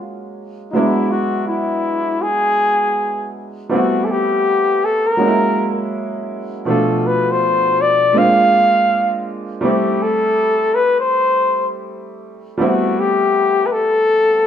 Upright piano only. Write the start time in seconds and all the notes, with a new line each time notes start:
Already playing: F#3 G#3 A#3 C#4 F5
0.73 F#3 G#3 B3 D4 E4
3.69 G3 A3 B3 C4 E4
5.17 F#3 G#3 A#3 C#4 D#4
5.27 E4
6.65 B2 F3 A3 D4 F4
8.13 G#3 A#3 C4 D4 F4
9.61 G3 A3 C4 E4
12.58 G3 A3 B3 C4 E4